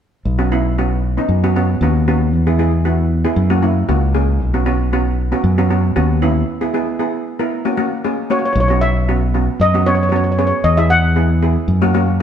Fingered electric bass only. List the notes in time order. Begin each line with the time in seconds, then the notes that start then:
0.25 B1
1.29 F#2
1.81 D#2
2.32 E2
3.36 F#2
3.89 C#2
4.41 B1
5.44 F#2
5.96 D#2
8.55 B1
9.60 F#2
10.64 E2
11.68 F#2